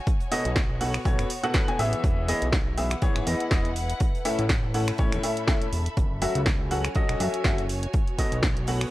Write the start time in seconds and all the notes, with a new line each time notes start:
Already playing: F#4 C#5 G#5
0.07 B3, kick, closed hi-hat
0.20 closed hi-hat
0.32 B2 B3 F#4 A4 D#5, closed hi-hat, open hi-hat
0.45 B1, closed hi-hat
0.56 kick, snare, closed hi-hat
0.81 B2 B3 F#4 A4 F#5, open hi-hat
0.94 finger snap, closed hi-hat
1.05 B1 B2 B3 F#4 A4 C#5, kick, closed hi-hat
1.19 F#1, finger snap, closed hi-hat
1.30 closed hi-hat, open hi-hat
1.44 B2 B3 F#4 A4 F#5, closed hi-hat
1.54 B2 B3 F#4 A4 F#5, kick, snare, closed hi-hat
1.68 B2 B3 F#4 A4 G#5, closed hi-hat
1.79 A1 E3 B3 E4 G#4 E5, closed hi-hat, open hi-hat
1.93 closed hi-hat
2.04 E1 E4, kick, closed hi-hat
2.28 E3 B3 E4 G#4 D#5, closed hi-hat, open hi-hat
2.42 B1, closed hi-hat
2.52 kick, snare, closed hi-hat
2.77 E3 B3 E4 G#4 E5, closed hi-hat, open hi-hat
2.91 B4 F#5, finger snap, closed hi-hat
3.02 E3 B3 E4 G#4 C#5, kick, closed hi-hat
3.16 G#1, finger snap, closed hi-hat
3.27 E2 E3 B3 E4 G#4 D#5, closed hi-hat, open hi-hat
3.40 closed hi-hat
3.51 E1 E3 B3 E4 G#4 D#5, kick, snare, closed hi-hat
3.65 closed hi-hat
3.76 closed hi-hat, open hi-hat
3.90 closed hi-hat
4.00 A4, kick, closed hi-hat
4.15 closed hi-hat
4.25 A2 C#4 E4 A4 E5, closed hi-hat, open hi-hat
4.39 A1, closed hi-hat
4.49 kick, snare, closed hi-hat
4.74 A2 C#4 E4 A4 E5 F#5, open hi-hat
4.88 B5, finger snap, closed hi-hat
4.98 A1 A2 C#4 E4 A4 C#5, kick, closed hi-hat
5.12 E2, finger snap, closed hi-hat
5.23 A2 C#4 E4 A4 E5, closed hi-hat, open hi-hat
5.37 closed hi-hat
5.47 A2 C#4 E4 A4 E5, kick, snare, closed hi-hat
5.62 closed hi-hat
5.73 E1, closed hi-hat, open hi-hat
5.86 closed hi-hat
5.97 F#1 F#4, kick, closed hi-hat
6.22 F#3 C#4 F#4 A4 E5, closed hi-hat, open hi-hat
6.35 C#2, closed hi-hat
6.46 kick, snare, closed hi-hat
6.57 G#5
6.64 C#5
6.71 F#3 C#4 F#4 A4 F#5, closed hi-hat, open hi-hat
6.84 finger snap, closed hi-hat
6.95 F#3 C#4 F#4 A4 D#5, kick, closed hi-hat
7.09 B1, finger snap, closed hi-hat
7.20 F#2 F#3 C#4 F#4 A4 E5, closed hi-hat, open hi-hat
7.34 closed hi-hat
7.44 F#1 F#3 C#4 F#4 A4 E5, kick, snare, closed hi-hat
7.58 closed hi-hat
7.69 closed hi-hat, open hi-hat
7.83 closed hi-hat
7.94 B3, kick, closed hi-hat
8.08 closed hi-hat
8.19 B2 B3 F#4 A4 D#5, kick, closed hi-hat, open hi-hat
8.32 B1, closed hi-hat
8.43 kick, snare, closed hi-hat
8.57 closed hi-hat
8.67 B2 B3 F#4 A4 F#5, open hi-hat
8.81 finger snap, closed hi-hat